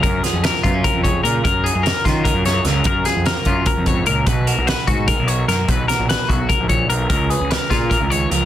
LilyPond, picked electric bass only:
\new Staff \with { instrumentName = "Picked electric bass" } { \clef bass \time 7/8 \key fis \major \tempo 4 = 149 fis,8 r16 eis,8 r16 fis,8 r16 eis,8. ais,8 | fis,8. fis,8 r16 dis8. fis,8. cis,8 | fis,8 r16 eis,8 r16 fis,8 r16 eis,8. cis,8 | b,,8. b,,8 r16 gis,8. b,,8. fis,8 |
b,,8 r16 ais,,8 r16 b,,8 r16 ais,,8. b,,8 | cis,8. cis,8 r16 ais,8. cis,8. cis,8 | }